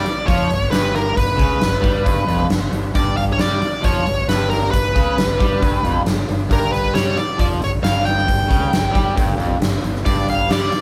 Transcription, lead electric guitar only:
0.00 0.29 D5 medium
0.27 0.69 C#5 medium
0.71 0.95 B4 medium
0.96 1.17 A#4 medium
1.17 2.47 B4 medium
2.96 3.17 D5 medium
3.17 3.22 F5 medium
3.33 3.39 C#5 medium
3.40 3.86 D5 medium
3.85 4.26 C#5 medium
4.29 4.49 B4 medium
4.50 4.71 A#4 medium
4.71 6.01 B4 medium
6.53 6.72 A#4 medium
6.72 6.93 B4 medium
6.95 7.17 C#5 medium
7.18 7.39 D5 medium
7.40 7.46 D5 medium
7.64 7.70 C#5 medium
7.84 8.04 F5 medium
8.05 9.35 G5 medium
10.05 10.26 D5 medium
10.30 10.51 F5 medium
10.53 10.81 D5 medium

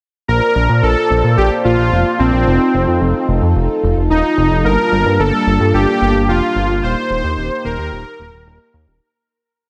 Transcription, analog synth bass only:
0.28 0.41 A#1 loud
0.56 0.68 A#1 medium
0.69 0.82 A#2 medium
0.83 0.95 A#1 loud
1.10 1.22 A#1 medium
1.24 1.36 A#2 medium
1.37 1.50 A#1 medium
1.65 1.77 A#1 loud
1.78 1.91 A#1 medium
1.92 2.04 F1 loud
2.19 2.32 A#1 loud
2.33 2.45 A#1 medium
2.47 2.59 F1 loud
2.74 2.86 F1 medium
2.87 3.00 F2 medium
3.01 3.13 F1 loud
3.28 3.41 F1 medium
3.42 3.54 F2 medium
3.56 3.68 F1 loud
3.83 3.95 F1 medium
3.97 4.09 F1 medium
4.10 4.22 D#1 loud
4.37 4.50 F1 medium
4.51 4.63 F1 medium
4.65 4.77 G1 loud
4.92 5.04 G1 medium
5.06 5.18 G2 medium
5.19 5.32 G1 loud
5.47 5.59 G1 medium
5.60 5.72 G2 medium
5.74 5.86 G1 medium
6.01 6.13 G1 loud
6.15 6.27 G1 medium
6.28 6.41 F1 loud
6.56 6.68 G1 loud
6.69 6.82 G1 medium
6.83 6.95 D#1 loud
7.10 7.22 D#1 medium
7.24 7.36 D#2 medium
7.37 7.50 D#1 loud
7.65 7.77 D#1 medium
7.78 7.91 D#2 medium
7.92 8.04 D#1 medium
8.19 8.32 D#1 medium
8.33 8.45 D#1 medium
8.46 8.59 D#1 loud
8.74 8.86 D#2 medium
8.87 9.00 D#1 medium

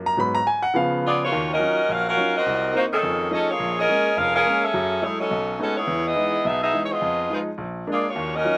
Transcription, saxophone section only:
1.06 1.20 B3 loud
1.06 1.20 F4 medium
1.06 1.20 G#4 loud
1.06 1.20 D5 loud
1.23 1.48 A#3 medium
1.23 1.48 F4 medium
1.23 1.48 F#4 medium
1.23 1.48 C#5 loud
1.52 1.90 C#4 medium
1.52 1.90 F#4 medium
1.52 1.90 A#4 loud
1.52 1.90 D#5 loud
1.91 2.07 C#4 loud
1.91 2.07 F#4 loud
1.91 2.06 A#4 loud
1.91 2.06 F5 loud
2.08 2.33 C#4 loud
2.08 2.33 F#4 loud
2.08 2.33 A#4 medium
2.08 2.33 F5 loud
2.36 2.72 C4 medium
2.36 2.72 F#4 loud
2.36 2.72 A#4 medium
2.36 2.72 D#5 loud
2.76 2.83 A#3 medium
2.76 2.83 D#4 medium
2.76 2.83 F#4 medium
2.76 2.83 C5 loud
2.92 3.29 D#3 loud
2.92 3.29 C#4 medium
2.92 3.29 G#4 medium
2.92 3.29 A4 loud
3.32 3.47 C#4 loud
3.32 3.47 G#4 medium
3.32 3.47 A4 medium
3.32 3.47 D#5 loud
3.49 3.77 A#3 medium
3.49 3.77 F4 medium
3.49 3.77 G#4 medium
3.49 3.77 C#5 loud
3.78 4.15 C#4 loud
3.78 4.15 G#4 loud
3.78 4.14 A#4 loud
3.78 4.15 D#5 loud
4.18 4.34 C#4 loud
4.18 4.34 G#4 medium
4.18 4.33 A#4 loud
4.18 4.33 F5 loud
4.35 4.61 C#4 loud
4.35 4.61 G#4 loud
4.35 4.60 A#4 loud
4.35 4.60 F5 loud
4.63 5.02 C#4 medium
4.63 5.02 G#4 medium
4.63 5.02 A4 medium
4.63 5.03 E5 loud
5.03 5.19 A3 medium
5.03 5.19 E4 medium
5.03 5.19 G#4 medium
5.03 5.19 C#5 loud
5.20 5.57 F#3 medium
5.20 5.57 C#4 medium
5.20 5.57 D#4 medium
5.20 5.57 A4 loud
5.61 5.77 C#4 medium
5.61 5.77 F#4 medium
5.61 5.77 A4 medium
5.61 5.77 D#5 medium
5.76 6.02 B3 medium
5.76 6.02 E4 medium
5.76 6.03 G#4 medium
5.76 6.02 C#5 loud
6.05 6.44 B3 medium
6.05 6.45 E4 loud
6.05 6.44 G#4 medium
6.05 6.45 D#5 loud
6.45 6.61 B3 medium
6.45 6.61 D#4 medium
6.45 6.61 G#4 medium
6.45 6.61 E5 loud
6.62 6.80 B3 medium
6.62 6.80 D#4 loud
6.62 6.81 G#4 medium
6.62 6.81 E5 loud
6.83 6.91 C#5 medium
6.91 7.30 B3 medium
6.91 7.30 F4 medium
6.91 7.30 G#4 medium
6.91 7.30 D#5 medium
7.32 7.39 G#3 medium
7.32 7.39 D#4 medium
7.32 7.40 F4 medium
7.32 7.39 B4 medium
7.91 8.05 A#3 medium
7.91 8.05 F4 medium
7.91 8.05 G#4 medium
7.91 8.05 D5 medium
8.08 8.34 A#3 medium
8.08 8.34 F4 medium
8.08 8.34 F#4 medium
8.08 8.34 C#5 loud
8.35 8.58 C#4 loud
8.35 8.58 F#4 medium
8.35 8.58 A#4 medium
8.35 8.58 D#5 loud

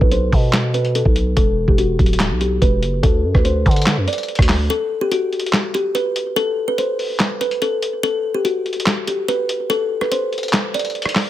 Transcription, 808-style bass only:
0.01 0.31 B1 loud
0.33 1.03 B2 loud
1.05 1.35 B1 loud
1.37 1.67 E1 loud
1.68 1.98 E1 loud
1.99 2.32 D1 loud
2.30 2.60 B1 loud
2.62 2.84 E1 loud
2.83 3.02 F#1 loud
3.03 3.26 D2 loud
3.24 3.34 F#2 loud
3.35 3.65 D2 loud
3.66 3.99 D3 loud
3.97 4.07 F#2 loud
4.39 4.69 D2 loud

